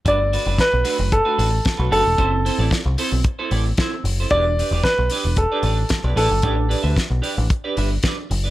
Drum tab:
HH |xoxoxoxo|xoxoxoxo|xoxoxoxo|xoxoxoxo|
SD |--o---o-|--o---o-|--o---o-|--o---o-|
BD |o-o-o-o-|o-o-o-o-|o-o-o-o-|o-o-o-o-|